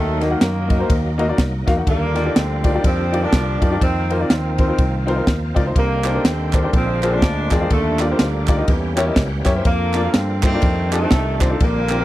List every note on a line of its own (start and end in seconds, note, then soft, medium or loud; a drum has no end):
0.00 0.34 D#2 medium
0.00 0.40 D#3 medium
0.00 0.66 D#3 medium
0.00 0.40 F#3 medium
0.00 1.82 F#3 medium
0.00 0.22 A3 loud
0.00 1.83 A#3 medium
0.00 1.82 D#4 medium
0.21 0.26 A#3 medium
0.21 0.40 A#3 medium
0.21 0.27 D#4 medium
0.21 0.27 F#4 medium
0.21 0.27 A#4 medium
0.21 0.27 D#5 medium
0.21 snare soft
0.21 ride medium
0.30 0.42 A#3 medium
0.30 0.42 D#4 medium
0.30 0.42 F#4 medium
0.30 0.43 A#4 medium
0.30 0.43 F#5 medium
0.41 0.82 F#2 loud
0.41 1.34 D#3 medium
0.41 1.34 F#3 medium
0.41 1.15 A#3 medium
0.41 snare loud
0.41 ride medium
0.68 0.74 A#3 medium
0.68 0.75 D#4 medium
0.68 0.75 F#4 medium
0.68 0.75 A#4 medium
0.68 0.75 D#5 medium
0.68 kick medium
0.68 ride medium
0.79 0.91 A#3 medium
0.79 0.91 D#4 medium
0.79 0.92 F#4 medium
0.79 0.92 A#4 medium
0.79 0.92 C5 medium
0.90 1.31 D#2 loud
0.90 kick loud
0.90 ride medium
1.18 1.24 A#3 medium
1.18 1.24 D#4 medium
1.18 1.24 F#4 medium
1.18 1.24 A#4 medium
1.18 1.24 D#5 loud
1.18 ride medium
1.28 1.40 A#3 medium
1.28 1.40 D#4 medium
1.28 1.40 F#4 medium
1.28 1.40 A#4 medium
1.28 1.41 D5 medium
1.38 1.63 C2 loud
1.38 kick medium
1.38 snare loud
1.38 ride medium
1.67 1.84 E2 medium
1.67 1.72 A#3 medium
1.67 1.72 D#4 medium
1.67 1.72 F#4 medium
1.67 1.73 A#4 medium
1.67 1.73 F5 loud
1.67 kick loud
1.67 snare soft
1.67 ride medium
1.77 1.87 A#3 medium
1.77 1.87 D#4 medium
1.77 1.87 F#4 medium
1.77 1.87 A#4 medium
1.77 1.88 F#5 medium
1.86 2.28 D#2 loud
1.86 2.60 D3 medium
1.86 3.77 D3 medium
1.86 2.80 D3 medium
1.86 3.77 G3 medium
1.86 2.35 G3 medium
1.86 3.77 A#3 medium
1.86 2.33 A#3 loud
1.86 3.77 D4 medium
1.86 3.77 F4 medium
1.86 kick loud
1.86 ride medium
2.14 2.20 D#4 medium
2.14 2.21 F4 medium
2.14 2.21 G4 medium
2.14 2.21 A#4 medium
2.14 2.21 D5 medium
2.14 snare soft
2.14 ride medium
2.25 2.37 D#4 medium
2.25 2.37 F4 medium
2.25 2.37 G4 medium
2.25 2.38 A#4 medium
2.25 2.38 D5 medium
2.36 2.77 D2 medium
2.36 2.84 F3 medium
2.36 2.84 G3 medium
2.36 2.84 C4 medium
2.36 snare loud
2.36 ride medium
2.63 2.69 D#4 medium
2.63 2.70 F4 medium
2.63 2.70 G4 medium
2.63 2.70 A#4 medium
2.63 2.70 D5 medium
2.63 kick loud
2.63 ride medium
2.74 2.86 D#4 medium
2.74 2.86 F4 medium
2.74 2.86 G4 medium
2.74 2.86 A#4 medium
2.74 2.86 D5 medium
2.84 3.25 F2 medium
2.84 3.22 F3 medium
2.84 3.22 G3 medium
2.84 3.21 C4 medium
2.84 kick loud
2.84 ride medium
3.12 3.18 D#4 medium
3.12 3.18 F4 medium
3.12 3.19 G4 medium
3.12 3.19 A#4 medium
3.12 3.19 D5 medium
3.12 ride medium
3.22 3.77 F3 medium
3.22 3.77 G3 medium
3.22 3.61 D4 loud
3.22 3.34 D#4 medium
3.22 3.34 F4 medium
3.22 3.35 G4 medium
3.22 3.35 A#4 medium
3.22 3.35 D5 medium
3.33 3.57 C2 medium
3.33 kick loud
3.33 snare loud
3.33 ride medium
3.61 3.78 F#2 medium
3.61 3.80 D4 loud
3.61 3.67 D#4 medium
3.61 3.67 F4 medium
3.61 3.67 G4 medium
3.61 3.67 A#4 medium
3.61 3.67 D5 medium
3.61 kick loud
3.61 ride medium
3.71 3.81 D#4 medium
3.71 3.81 F4 medium
3.71 3.81 G4 medium
3.71 3.82 A#4 medium
3.71 3.82 D5 medium
3.80 4.23 F2 loud
3.80 5.72 D#3 medium
3.80 4.30 D#3 medium
3.80 5.72 F3 medium
3.80 3.88 A3 soft
3.80 5.72 C4 medium
3.80 4.10 C4 loud
3.80 5.72 F4 medium
3.80 kick loud
3.80 ride medium
3.87 5.74 A#3 medium
4.10 4.30 A#3 medium
4.10 4.16 C4 medium
4.10 4.16 D#4 medium
4.10 4.16 F4 medium
4.10 4.16 A#4 medium
4.10 4.16 C5 medium
4.10 ride medium
4.19 4.31 C4 medium
4.19 4.32 D#4 medium
4.19 4.32 F4 medium
4.19 4.32 A#4 medium
4.19 4.32 D5 medium
4.30 4.71 D#2 medium
4.30 5.24 D#3 medium
4.30 5.08 C4 medium
4.30 snare loud
4.30 ride medium
4.58 4.64 C4 medium
4.58 4.64 D#4 medium
4.58 4.64 F4 medium
4.58 4.65 A#4 medium
4.58 4.65 C5 medium
4.58 kick loud
4.58 ride medium
4.67 4.80 C4 medium
4.67 4.80 D#4 medium
4.67 4.80 F4 medium
4.67 4.80 A#4 medium
4.67 4.81 C5 medium
4.78 5.20 C2 medium
4.78 kick loud
4.78 ride medium
5.07 5.13 C4 medium
5.07 5.13 D#4 medium
5.07 5.13 F4 medium
5.07 5.13 A#4 medium
5.07 5.14 C5 medium
5.07 ride medium
5.16 5.28 C4 medium
5.16 5.29 D#4 medium
5.16 5.29 F4 medium
5.16 5.29 A#4 medium
5.16 5.29 C5 medium
5.27 5.52 D#2 medium
5.27 kick medium
5.27 snare loud
5.27 ride medium
5.55 5.73 C#2 medium
5.55 5.61 C4 medium
5.55 5.61 D#4 medium
5.55 5.61 F4 medium
5.55 5.62 A#4 medium
5.55 5.62 D5 medium
5.55 kick loud
5.55 ride medium
5.65 5.75 C4 medium
5.65 5.76 D#4 medium
5.65 5.76 F4 medium
5.65 5.76 A#4 medium
5.65 5.76 C5 medium
5.75 6.17 C2 loud
5.75 6.49 C3 medium
5.75 6.70 D3 medium
5.75 6.24 D#3 medium
5.75 6.71 G3 medium
5.75 6.71 A#3 medium
5.75 6.22 A#3 loud
5.75 6.71 C4 medium
5.75 6.71 D4 medium
5.75 6.71 G4 medium
5.75 kick loud
5.75 ride medium
6.04 6.10 D4 medium
6.04 6.10 D#4 medium
6.04 6.10 G4 medium
6.04 6.10 A#4 medium
6.04 6.11 C5 medium
6.04 snare soft
6.04 clap medium
6.04 ride medium
6.14 6.26 D4 medium
6.14 6.26 D#4 medium
6.14 6.26 G4 medium
6.14 6.27 A#4 medium
6.14 6.27 C5 medium
6.24 6.66 D#2 medium
6.24 6.70 D#3 medium
6.24 6.70 G3 medium
6.24 6.71 C4 medium
6.24 snare loud
6.24 ride medium
6.53 6.59 D4 medium
6.53 6.59 D#4 medium
6.53 6.60 G4 medium
6.53 6.60 A#4 medium
6.53 6.60 C5 medium
6.53 kick loud
6.53 clap loud
6.53 ride medium
6.63 6.73 D4 medium
6.63 6.74 D#4 medium
6.63 6.74 G4 medium
6.63 6.74 A#4 medium
6.63 6.74 C5 medium
6.72 7.22 A#1 loud
6.72 7.47 A#2 medium
6.72 7.68 D3 medium
6.72 7.13 F3 medium
6.72 7.68 G#3 medium
6.72 7.13 G#3 medium
6.72 7.68 A#3 medium
6.72 7.68 C4 medium
6.72 7.11 C4 medium
6.72 7.68 F4 medium
6.72 kick loud
6.72 ride medium
7.02 7.08 D4 medium
7.02 7.08 F4 medium
7.02 7.08 G#4 medium
7.02 7.08 A#4 medium
7.02 7.08 C5 medium
7.02 clap medium
7.02 ride medium
7.11 7.68 F3 medium
7.11 7.68 G#3 medium
7.11 7.24 D4 medium
7.11 7.52 D4 loud
7.11 7.24 F4 medium
7.11 7.24 G#4 medium
7.11 7.24 A#4 medium
7.11 7.25 C5 medium
7.22 7.47 D2 medium
7.22 kick medium
7.22 snare loud
7.22 ride medium
7.50 7.68 E2 medium
7.50 7.71 C4 loud
7.50 7.56 D4 medium
7.50 7.56 F4 medium
7.50 7.57 G#4 medium
7.50 7.57 A#4 medium
7.50 7.57 D5 medium
7.50 kick loud
7.50 snare soft
7.50 clap medium
7.50 ride medium
7.60 7.70 D4 medium
7.60 7.71 F4 medium
7.60 7.71 G#4 medium
7.60 7.71 A#4 medium
7.60 7.71 D5 medium
7.70 8.12 D#2 medium
7.70 8.66 D3 medium
7.70 8.45 D3 medium
7.70 8.20 D3 medium
7.70 8.65 F3 medium
7.70 8.66 G3 medium
7.70 8.00 A3 loud
7.70 8.66 A#3 medium
7.70 8.66 D4 medium
7.70 8.66 F4 medium
7.70 kick medium
7.70 ride medium
7.99 8.19 A#3 medium
7.99 8.05 D#4 medium
7.99 8.05 F4 medium
7.99 8.06 G4 medium
7.99 8.06 A#4 medium
7.99 8.06 D5 medium
7.99 snare soft
7.99 clap medium
7.99 ride medium
8.10 8.22 D#4 medium
8.10 8.22 F4 medium
8.10 8.22 G4 medium
8.10 8.22 A#4 medium
8.10 8.22 C5 medium
8.19 8.61 D2 medium
8.19 8.94 D3 medium
8.19 8.94 G3 medium
8.19 8.93 A#3 medium
8.19 snare loud
8.19 ride medium
8.47 8.54 D#4 medium
8.47 8.54 F4 medium
8.47 8.54 G4 medium
8.47 8.54 A#4 medium
8.47 8.54 D5 medium
8.47 kick loud
8.47 clap loud
8.47 ride medium
8.57 8.68 D#4 medium
8.57 8.68 F4 medium
8.57 8.68 G4 medium
8.57 8.68 A#4 medium
8.57 8.68 D#5 medium
8.68 9.10 E2 loud
8.68 9.64 E3 medium
8.68 9.42 E3 medium
8.68 9.64 G3 medium
8.68 9.64 A#3 medium
8.68 9.64 C#4 medium
8.68 9.64 G4 medium
8.68 kick loud
8.68 ride medium
8.96 9.02 C#4 medium
8.96 9.03 E4 medium
8.96 9.02 G4 medium
8.96 9.03 A#4 medium
8.96 9.03 C#5 loud
8.96 9.15 A5 medium
8.96 clap loud
8.96 ride medium
9.06 9.18 C#4 medium
9.06 9.18 E4 medium
9.06 9.19 G4 medium
9.06 9.19 A#4 medium
9.06 9.19 D#5 medium
9.16 9.41 C#2 loud
9.16 9.43 F#5 medium
9.16 kick loud
9.16 snare loud
9.16 ride medium
9.44 9.63 F#2 medium
9.44 9.51 C#4 medium
9.44 9.51 E4 medium
9.44 9.51 G4 medium
9.44 9.51 A#4 medium
9.44 9.51 C#5 loud
9.44 9.64 E5 medium
9.44 kick medium
9.44 snare soft
9.44 clap loud
9.44 ride medium
9.55 9.65 C#4 medium
9.55 9.66 E4 medium
9.55 9.66 G4 medium
9.55 9.66 A#4 medium
9.55 9.66 C5 medium
9.65 10.07 F2 loud
9.65 10.59 D3 medium
9.65 10.59 F3 medium
9.65 10.61 A#3 medium
9.65 10.11 A#3 loud
9.65 10.60 D4 medium
9.65 10.61 F4 medium
9.65 kick loud
9.65 ride medium
9.94 10.00 A#3 medium
9.94 10.00 D4 medium
9.94 10.00 F4 medium
9.94 10.01 A#4 medium
9.94 10.01 D5 medium
9.94 snare soft
9.94 clap medium
9.94 ride medium
10.03 10.16 A#3 medium
10.03 10.16 D4 medium
10.03 10.16 F4 medium
10.03 10.16 A#4 medium
10.03 10.17 F5 medium
10.14 10.56 G2 loud
10.14 10.43 C4 loud
10.14 snare loud
10.14 ride medium
10.42 10.91 D#3 medium
10.42 10.92 A3 medium
10.42 10.49 A#3 medium
10.42 10.89 C4 loud
10.42 10.49 D4 medium
10.42 10.49 F4 medium
10.42 10.49 A#4 medium
10.42 10.49 C5 medium
10.42 kick loud
10.42 clap loud
10.42 ride medium
10.53 10.63 A#3 medium
10.53 10.63 D4 medium
10.53 10.63 F4 medium
10.53 10.64 A#4 medium
10.53 10.64 D5 medium
10.62 11.04 F2 loud
10.62 11.58 D#3 medium
10.62 11.58 G3 medium
10.62 11.58 A3 medium
10.62 11.58 D4 medium
10.62 11.58 F4 medium
10.62 kick loud
10.62 ride medium
10.92 11.57 C3 medium
10.92 11.57 D#3 medium
10.92 11.38 A3 loud
10.92 10.98 D4 medium
10.92 10.98 D#4 medium
10.92 10.98 F4 medium
10.92 10.98 G4 medium
10.92 10.98 A4 medium
10.92 clap medium
10.92 ride medium
11.02 11.14 D4 medium
11.02 11.14 D#4 medium
11.02 11.14 F4 medium
11.02 11.14 C5 medium
11.11 11.53 C2 loud
11.11 kick medium
11.11 snare loud
11.11 ride medium
11.40 11.61 C4 loud
11.40 11.46 D4 medium
11.40 11.46 D#4 medium
11.40 11.46 F4 medium
11.40 11.46 G4 medium
11.40 11.47 C5 medium
11.40 kick loud
11.40 snare soft
11.40 clap loud
11.40 ride medium
11.50 11.60 D4 medium
11.50 11.61 D#4 medium
11.50 11.61 F4 medium
11.50 11.61 G4 medium
11.50 11.61 A4 medium
11.59 12.05 A#1 loud
11.59 12.05 A#2 medium
11.59 12.05 D3 medium
11.59 12.05 G3 medium
11.59 12.05 A#3 medium
11.59 12.05 A#3 loud
11.59 12.05 C4 medium
11.59 11.67 D#4 medium
11.59 kick loud
11.59 ride medium
11.66 12.05 F4 medium
11.89 11.95 C4 medium
11.89 11.95 D4 medium
11.89 11.95 F4 medium
11.89 11.96 G4 medium
11.89 11.96 A#4 medium
11.89 snare soft
11.89 clap medium
11.89 ride medium
11.99 12.05 C4 medium
11.99 12.05 D4 medium
11.99 12.05 F4 medium
11.99 12.05 G4 medium
11.99 12.05 A#4 medium